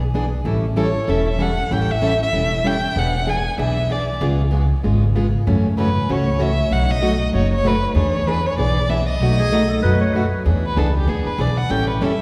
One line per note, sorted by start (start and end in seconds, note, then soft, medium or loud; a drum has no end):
0.00 0.32 B1 medium
0.14 0.25 E3 medium
0.14 0.25 B3 medium
0.14 0.25 D4 medium
0.14 0.25 G#4 medium
0.45 0.95 A1 medium
0.45 0.65 E3 medium
0.45 0.65 G3 medium
0.45 0.65 C#4 medium
0.45 0.65 E4 medium
0.45 0.65 A4 medium
0.76 0.87 E3 medium
0.76 0.87 G3 medium
0.76 0.87 C#4 medium
0.76 0.88 E4 medium
0.76 0.88 A4 loud
0.76 1.11 C#5 medium
1.07 1.58 E1 medium
1.07 1.27 E3 medium
1.07 1.27 G3 medium
1.07 1.28 C#4 medium
1.07 1.28 E4 medium
1.07 1.28 A4 medium
1.07 1.27 E5 medium
1.29 1.43 E5 medium
1.38 1.49 E3 medium
1.38 1.50 G3 medium
1.38 1.50 C#4 medium
1.38 1.50 E4 medium
1.38 1.50 A4 medium
1.38 1.74 F#5 medium
1.71 2.21 A1 medium
1.71 1.91 E3 medium
1.71 1.91 G3 medium
1.71 1.91 C#4 medium
1.71 1.91 E4 medium
1.71 1.91 A4 medium
1.71 1.93 G5 medium
1.91 2.22 E5 loud
2.01 2.12 E3 medium
2.01 2.13 G3 medium
2.01 2.13 C#4 medium
2.01 2.13 E4 medium
2.01 2.13 A4 loud
2.23 2.69 E5 loud
2.32 2.83 E1 medium
2.32 2.52 E3 medium
2.32 2.53 G3 medium
2.32 2.53 C#4 medium
2.32 2.53 E4 medium
2.32 2.53 A4 medium
2.64 2.75 E3 medium
2.64 2.75 G3 medium
2.64 2.76 C#4 medium
2.64 2.75 E4 medium
2.64 2.76 A4 medium
2.64 3.00 G5 loud
2.96 3.46 E1 medium
2.96 3.16 E3 medium
2.96 3.16 B3 medium
2.96 3.16 D4 medium
2.96 3.16 G#4 medium
2.96 3.31 F#5 medium
3.26 3.37 E3 medium
3.26 3.38 B3 medium
3.26 3.38 D4 medium
3.26 3.38 G#4 loud
3.26 3.60 G#5 medium
3.58 4.09 B1 medium
3.58 3.78 E3 medium
3.58 3.78 B3 medium
3.58 3.78 D4 medium
3.58 3.79 G#4 medium
3.58 3.93 E5 medium
3.89 4.00 E3 medium
3.89 4.01 B3 medium
3.89 4.01 D4 medium
3.89 4.01 G#4 medium
3.89 4.22 D5 medium
4.21 4.71 C#2 loud
4.21 4.41 C#3 medium
4.21 4.41 G#3 medium
4.21 4.41 B3 medium
4.21 4.41 F4 medium
4.21 4.41 G#4 medium
4.51 4.62 C#3 medium
4.51 4.63 G#3 loud
4.51 4.63 B3 medium
4.51 4.63 F4 medium
4.51 4.63 G#4 medium
4.83 5.34 G#1 medium
4.83 5.03 C#3 medium
4.83 5.04 G#3 medium
4.83 5.04 B3 medium
4.83 5.04 F4 medium
4.83 5.04 G#4 medium
5.15 5.26 C#3 medium
5.15 5.26 G#3 medium
5.15 5.26 B3 medium
5.15 5.26 F4 medium
5.15 5.26 G#4 medium
5.46 5.97 F#2 medium
5.46 5.66 C#3 medium
5.46 5.66 E3 medium
5.46 5.67 A3 medium
5.46 5.67 C#4 medium
5.46 5.67 F#4 medium
5.77 5.88 C#3 medium
5.77 5.88 E3 medium
5.77 5.89 A3 medium
5.77 5.89 C#4 medium
5.77 5.89 F#4 medium
5.77 6.12 B4 medium
6.09 6.59 C#2 medium
6.09 6.29 C#3 medium
6.09 6.29 E3 medium
6.09 6.29 A3 medium
6.09 6.29 C#4 medium
6.09 6.29 F#4 medium
6.09 6.43 C#5 medium
6.39 6.50 C#3 medium
6.39 6.50 E3 medium
6.39 6.50 A3 medium
6.39 6.50 C#4 medium
6.39 6.51 F#4 medium
6.39 6.74 E5 loud
6.71 7.21 B1 medium
6.71 6.91 B2 medium
6.71 6.91 F#3 medium
6.71 6.91 A3 medium
6.71 6.91 D#4 medium
6.71 6.91 F#4 medium
6.71 6.93 F#5 medium
6.91 7.22 D#5 loud
7.01 7.12 B2 loud
7.01 7.13 F#3 medium
7.01 7.13 A3 medium
7.01 7.13 D#4 loud
7.01 7.13 F#4 medium
7.33 7.83 F#1 medium
7.33 7.53 B2 medium
7.33 7.53 F#3 medium
7.33 7.53 A3 medium
7.33 7.54 D#4 medium
7.33 7.54 F#4 medium
7.33 7.51 C#5 medium
7.53 7.68 C#5 medium
7.65 7.75 B2 medium
7.65 7.75 F#3 medium
7.65 7.75 A3 medium
7.65 7.76 D#4 medium
7.65 7.76 F#4 medium
7.65 7.97 B4 medium
7.95 8.45 E2 medium
7.95 8.15 E3 medium
7.95 8.15 B3 medium
7.95 8.15 D4 medium
7.95 8.16 G#4 medium
7.95 8.29 C#5 medium
8.27 8.38 E3 medium
8.27 8.38 B3 medium
8.27 8.38 D4 medium
8.27 8.38 G#4 medium
8.27 8.48 B4 medium
8.46 8.58 C#5 medium
8.57 9.08 B1 medium
8.57 8.78 E3 medium
8.57 8.78 B3 medium
8.57 8.78 D4 medium
8.57 8.78 G#4 medium
8.57 8.91 D5 medium
8.89 9.00 E3 medium
8.89 9.00 B3 medium
8.89 9.00 D4 medium
8.89 9.00 G#4 medium
8.89 9.08 E5 medium
9.09 10.11 D#5 loud
9.20 9.70 B1 medium
9.20 9.41 B2 medium
9.20 9.41 F#3 medium
9.20 9.41 A3 medium
9.20 9.41 D#4 medium
9.20 9.41 F#4 medium
9.39 9.71 G#4 medium
9.52 9.62 B2 medium
9.52 9.63 F#3 medium
9.52 9.63 A3 medium
9.52 9.63 D#4 medium
9.52 9.63 F#4 medium
9.70 9.82 A4 medium
9.82 10.33 F#2 medium
9.82 10.03 B2 medium
9.82 10.03 F#3 medium
9.82 10.03 A3 medium
9.82 10.03 D#4 medium
9.82 10.03 F#4 medium
9.82 10.00 B4 loud
10.01 10.15 C#5 medium
10.13 10.25 B2 medium
10.13 10.25 F#3 medium
10.13 10.25 A3 medium
10.13 10.25 D#4 medium
10.13 10.26 F#4 medium
10.13 10.45 B4 medium
10.45 10.76 E2 medium
10.45 10.64 E3 medium
10.45 10.65 B3 medium
10.45 10.65 D4 medium
10.45 10.65 G#4 medium
10.66 10.80 B4 medium
10.76 11.06 C#2 medium
10.76 10.87 E3 medium
10.76 10.87 B3 medium
10.76 10.87 D4 medium
10.76 10.87 G#4 loud
10.76 10.96 A4 medium
10.97 11.11 G4 medium
11.07 11.24 D2 medium
11.07 11.27 E3 medium
11.07 11.27 B3 medium
11.07 11.27 D4 medium
11.07 11.27 G#4 medium
11.07 11.29 G#4 medium
11.26 11.42 B4 medium
11.26 muted upright bass stroke soft
11.38 11.69 B1 medium
11.38 11.49 E3 medium
11.38 11.49 B3 medium
11.38 11.49 D4 medium
11.38 11.49 G#4 medium
11.38 11.59 D5 medium
11.57 11.72 F#5 medium
11.69 12.00 A1 loud
11.69 11.89 E3 medium
11.69 11.89 G3 medium
11.69 11.89 C#4 medium
11.69 11.89 E4 medium
11.69 11.90 A4 medium
11.69 11.88 G5 loud
11.90 12.05 B4 medium
12.01 12.22 G1 medium
12.01 12.11 E3 medium
12.01 12.12 G3 loud
12.01 12.12 C#4 loud
12.01 12.12 E4 medium
12.01 12.12 A4 medium
12.01 12.22 E5 medium